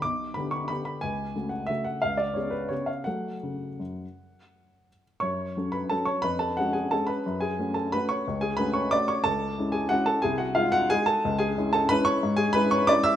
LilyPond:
<<
  \new Staff \with { instrumentName = "Upright piano" } { \time 3/4 \key fis \minor \tempo 4 = 178 d'''4 b''8 cis'''8 b''8 b''8 | gis''4. fis''8 e''8 fis''8 | eis''8 d''8 cis''8 b'8 cis''8 eis''8 | fis''2.~ |
fis''2~ fis''8 r8 | <cis'' cis'''>4. <b' b''>8 <a' a''>8 <cis'' cis'''>8 | <b' b''>8 <a' a''>8 <fis' fis''>8 <gis' gis''>8 <a' a''>8 <b' b''>8~ | <b' b''>8 <gis' gis''>4 <a' a''>8 <b' b''>8 <cis'' cis'''>8~ |
<cis'' cis'''>8 <gis' gis''>8 <b' b''>8 <cis'' cis'''>8 <d'' d'''>8 <cis'' cis'''>8 | <a' a''>4. <gis' gis''>8 <fis' fis''>8 <a' a''>8 | <gis' gis''>8 <fis' fis''>8 <eis' eis''>8 <fis' fis''>8 <gis' gis''>8 <a' a''>8~ | <a' a''>8 <gis' gis''>4 <a' a''>8 <b' b''>8 <cis'' cis'''>8~ |
<cis'' cis'''>8 <gis' gis''>8 <b' b''>8 <cis'' cis'''>8 <d'' d'''>8 <e'' e'''>8 | }
  \new Staff \with { instrumentName = "Upright piano" } { \time 3/4 \key fis \minor b,,4 <d b g'>4 <d b g'>4 | cis,4 <cis a fis'>4 <cis a fis'>4 | cis,4 <cis b gis'>4 <cis b gis'>4 | <fis a a'>4 cis4 fis,4 |
r2. | fis,4 <fis cis' a'>4 <fis cis'>4 | eis,4 <gis cis' gis'>4 <gis cis' gis'>4 | fis,4 <a cis' fis'>4 <a cis' fis'>4 |
cis,4 <a cis' fis'>4 <a cis' fis'>4 | cis,4 <gis cis' e'>4 <gis cis' e'>4 | bis,,4 <gis dis' fis'>4 <gis dis' fis'>4 | cis,4 <gis cis' e'>4 <gis cis' e'>4 |
gis,4 <gis cis' e'>4 <gis cis' e'>4 | }
>>